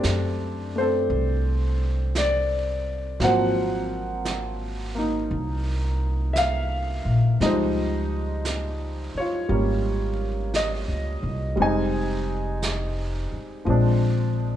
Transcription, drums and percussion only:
0.03 brush sweep soft
0.03 snare soft
0.03 hi-hat pedal soft
1.09 brush sweep soft
2.15 brush sweep soft
2.15 snare soft
2.15 hi-hat pedal soft
3.20 brush sweep soft
3.20 snare soft
4.25 brush sweep soft
4.25 snare soft
4.25 hi-hat pedal soft
5.30 brush sweep soft
6.36 brush sweep soft
6.36 snare soft
6.36 hi-hat pedal soft
7.41 brush sweep soft
7.41 snare soft
8.45 brush sweep soft
8.45 snare soft
8.45 hi-hat pedal soft
9.49 brush sweep soft
10.54 brush sweep soft
10.54 snare soft
10.54 hi-hat pedal soft
11.58 brush sweep soft
12.63 brush sweep soft
12.63 snare soft
12.63 hi-hat pedal soft
13.67 brush sweep soft

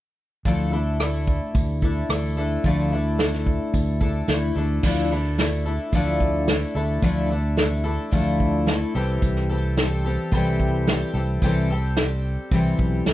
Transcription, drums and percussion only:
0.45 kick medium
0.45 open hi-hat soft
1.00 cross-stick medium
1.00 open hi-hat soft
1.27 kick medium
1.55 kick medium
1.55 open hi-hat soft
1.82 kick medium
2.10 cross-stick medium
2.10 open hi-hat soft
2.64 kick medium
2.64 open hi-hat soft
3.19 snare medium
3.19 open hi-hat soft
3.33 snare soft
3.46 kick medium
3.74 kick medium
3.74 open hi-hat soft
4.01 kick medium
4.28 snare medium
4.28 open hi-hat soft
4.83 kick medium
4.83 crash medium
5.38 snare medium
5.38 open hi-hat soft
5.93 kick medium
5.93 open hi-hat soft
6.20 kick medium
6.48 snare loud
6.48 open hi-hat medium
7.02 kick medium
7.02 open hi-hat soft
7.57 snare loud
7.57 open hi-hat soft
8.12 kick medium
8.12 open hi-hat soft
8.40 kick medium
8.67 snare loud
8.67 open hi-hat soft
9.22 kick medium
9.22 open hi-hat soft
9.36 snare soft
9.77 snare loud
9.77 open hi-hat soft
10.32 kick medium
10.32 open hi-hat soft
10.60 kick medium
10.87 snare loud
10.87 open hi-hat soft
11.42 kick medium
11.42 open hi-hat soft
11.96 snare loud
11.96 open hi-hat soft
12.51 kick loud
12.51 open hi-hat soft
12.79 kick medium
13.06 snare loud
13.06 open hi-hat soft

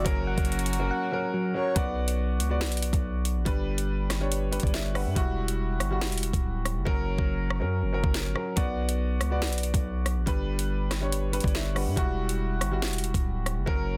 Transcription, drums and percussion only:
0.06 kick loud
0.06 closed hi-hat medium
0.38 kick medium
0.38 closed hi-hat soft
0.45 closed hi-hat medium
0.52 closed hi-hat medium
0.59 closed hi-hat medium
0.66 closed hi-hat medium
0.73 closed hi-hat medium
1.76 kick loud
1.76 closed hi-hat medium
2.08 closed hi-hat medium
2.40 closed hi-hat medium
2.61 snare loud
2.61 closed hi-hat soft
2.66 closed hi-hat medium
2.72 closed hi-hat medium
2.77 closed hi-hat medium
2.82 closed hi-hat medium
2.93 kick loud
2.93 closed hi-hat medium
3.25 closed hi-hat medium
3.46 kick loud
3.46 closed hi-hat medium
3.78 closed hi-hat medium
4.10 cross-stick loud
4.10 snare medium
4.10 closed hi-hat medium
4.32 closed hi-hat medium
4.53 closed hi-hat medium
4.60 kick loud
4.60 closed hi-hat medium
4.67 closed hi-hat soft
4.74 snare loud
4.95 cross-stick medium
4.95 open hi-hat soft
5.16 kick loud
5.16 closed hi-hat medium
5.48 closed hi-hat medium
5.80 cross-stick loud
5.80 closed hi-hat medium
6.01 snare loud
6.01 closed hi-hat soft
6.07 closed hi-hat medium
6.12 closed hi-hat medium
6.18 closed hi-hat medium
6.23 closed hi-hat medium
6.33 kick loud
6.33 closed hi-hat medium
6.65 cross-stick medium
6.65 closed hi-hat medium
6.87 kick loud
7.18 kick medium
7.50 cross-stick loud
8.04 kick loud
8.14 snare loud
8.36 cross-stick medium
8.57 kick loud
8.57 closed hi-hat medium
8.89 closed hi-hat medium
9.21 cross-stick loud
9.21 closed hi-hat medium
9.42 snare loud
9.42 closed hi-hat soft
9.47 closed hi-hat medium
9.53 closed hi-hat medium
9.58 closed hi-hat medium
9.63 closed hi-hat medium
9.74 kick loud
9.74 closed hi-hat medium
10.06 cross-stick medium
10.06 closed hi-hat medium
10.27 kick loud
10.27 closed hi-hat medium
10.59 closed hi-hat medium
10.91 cross-stick loud
10.91 snare medium
10.91 closed hi-hat medium
11.12 closed hi-hat medium
11.33 closed hi-hat medium
11.40 kick loud
11.40 closed hi-hat medium
11.48 closed hi-hat soft
11.55 snare loud
11.76 cross-stick medium
11.76 open hi-hat soft
11.97 kick loud
11.97 closed hi-hat medium
12.29 closed hi-hat medium
12.61 cross-stick loud
12.61 closed hi-hat medium
12.82 snare loud
12.82 closed hi-hat soft
12.88 closed hi-hat medium
12.93 closed hi-hat medium
12.98 closed hi-hat medium
13.04 closed hi-hat medium
13.14 kick loud
13.14 closed hi-hat loud
13.46 cross-stick medium
13.46 closed hi-hat medium
13.67 kick loud

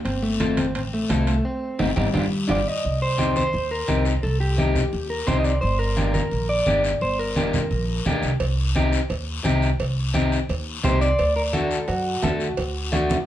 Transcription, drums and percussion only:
0.05 high timbale medium
0.05 long guiro medium
0.40 high conga medium
0.40 high timbale medium
0.40 short guiro medium
0.57 high conga medium
0.57 high timbale medium
0.57 short guiro medium
0.75 high timbale medium
0.75 long guiro medium
1.09 high conga medium
1.09 high timbale medium
1.09 low timbale medium
1.09 short guiro medium
1.27 high timbale medium
1.27 short guiro medium
1.79 high conga medium
1.79 high timbale medium
1.79 long guiro medium
1.96 high conga medium
1.96 high timbale medium
1.96 long guiro medium
2.14 high conga medium
2.14 high timbale medium
2.14 long guiro medium
2.49 high conga medium
2.49 high timbale medium
2.49 long guiro medium
2.84 long guiro medium
3.19 high conga medium
3.19 short guiro medium
3.36 high conga medium
3.36 short guiro medium
3.53 long guiro medium
3.88 high conga medium
3.88 short guiro medium
4.05 short guiro medium
4.23 long guiro medium
4.58 high conga medium
4.58 short guiro medium
4.76 high conga medium
4.76 low conga medium
4.76 short guiro medium
4.93 long guiro medium
5.28 high conga medium
5.28 low conga medium
5.28 short guiro medium
5.45 short guiro medium
5.62 long guiro medium
5.97 high conga medium
5.97 short guiro medium
6.14 high conga medium
6.14 short guiro medium
6.31 long guiro medium
6.66 high conga medium
6.66 short guiro medium
6.84 short guiro medium
7.01 long guiro medium
7.36 high conga medium
7.36 short guiro medium
7.54 high conga medium
7.54 low conga medium
7.54 short guiro medium
7.71 long guiro medium
8.05 high conga medium
8.05 low conga medium
8.05 short guiro medium
8.23 short guiro medium
8.40 cowbell loud
8.40 long guiro medium
8.75 high conga medium
8.75 short guiro medium
8.93 short guiro medium
9.10 cowbell medium
9.10 long guiro medium
9.45 high conga medium
9.45 short guiro medium
9.62 short guiro medium
9.80 cowbell loud
9.80 long guiro medium
10.15 high conga medium
10.15 short guiro medium
10.32 short guiro medium
10.49 cowbell medium
10.49 long guiro medium
10.84 high conga medium
10.84 low conga medium
10.84 low timbale medium
10.84 short guiro medium
11.01 short guiro medium
11.19 cowbell loud
11.19 long guiro medium
11.53 high conga medium
11.53 short guiro medium
11.71 short guiro medium
11.88 cowbell medium
11.88 long guiro medium
12.23 high conga medium
12.23 low timbale medium
12.23 short guiro medium
12.40 short guiro medium
12.57 cowbell loud
12.57 long guiro medium
12.92 high conga medium
12.92 short guiro medium
13.10 high conga medium
13.10 short guiro medium

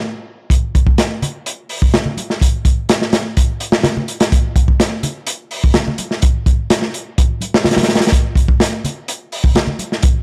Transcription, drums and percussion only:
0.50 kick loud
0.50 closed hi-hat medium
0.75 kick medium
0.75 closed hi-hat medium
0.87 kick loud
0.98 snare loud
0.98 closed hi-hat medium
1.22 closed hi-hat medium
1.22 low conga medium
1.46 closed hi-hat medium
1.69 open hi-hat medium
1.82 kick medium
1.94 snare loud
1.94 closed hi-hat medium
1.94 low conga medium
2.06 low conga medium
2.17 closed hi-hat medium
2.17 high conga medium
2.30 snare soft
2.41 kick loud
2.41 closed hi-hat medium
2.65 kick medium
2.65 closed hi-hat medium
2.89 snare loud
2.89 closed hi-hat medium
3.02 snare soft
3.13 snare medium
3.13 closed hi-hat medium
3.37 kick loud
3.37 closed hi-hat medium
3.60 closed hi-hat medium
3.72 snare loud
3.83 snare loud
3.83 closed hi-hat medium
3.83 low conga loud
3.97 low conga medium
4.08 closed hi-hat medium
4.20 snare loud
4.20 closed hi-hat medium
4.32 kick loud
4.32 closed hi-hat medium
4.56 kick loud
4.56 closed hi-hat medium
4.68 kick medium
4.80 snare loud
4.80 closed hi-hat medium
5.03 closed hi-hat medium
5.03 low conga medium
5.27 closed hi-hat medium
5.51 open hi-hat medium
5.64 kick loud
5.74 snare loud
5.74 closed hi-hat medium
5.74 low conga loud
5.88 low conga medium
5.98 closed hi-hat medium
5.98 high conga medium
6.11 snare soft
6.22 kick loud
6.22 closed hi-hat medium
6.46 kick loud
6.46 closed hi-hat medium
6.70 snare loud
6.70 closed hi-hat medium
6.82 snare soft
6.94 closed hi-hat medium
7.18 kick loud
7.18 closed hi-hat medium
7.41 closed hi-hat medium
7.41 high conga medium
7.54 snare loud
7.64 snare loud
7.64 closed hi-hat medium
7.64 low conga medium
7.71 snare medium
7.71 closed hi-hat medium
7.77 snare medium
7.77 closed hi-hat medium
7.77 high conga medium
7.77 low conga medium
7.83 snare medium
7.83 closed hi-hat medium
7.89 snare medium
7.89 closed hi-hat medium
7.95 snare medium
7.95 closed hi-hat medium
8.00 snare medium
8.00 closed hi-hat medium
8.07 snare medium
8.07 closed hi-hat medium
8.12 kick loud
8.12 closed hi-hat medium
8.35 kick medium
8.35 closed hi-hat medium
8.48 kick medium
8.60 snare loud
8.60 closed hi-hat medium
8.84 closed hi-hat medium
8.84 low conga medium
9.08 closed hi-hat medium
9.32 open hi-hat medium
9.44 kick loud
9.55 snare loud
9.55 closed hi-hat medium
9.55 low conga medium
9.67 low conga medium
9.79 closed hi-hat medium
9.79 high conga medium
9.92 snare soft
10.03 kick loud
10.03 closed hi-hat medium

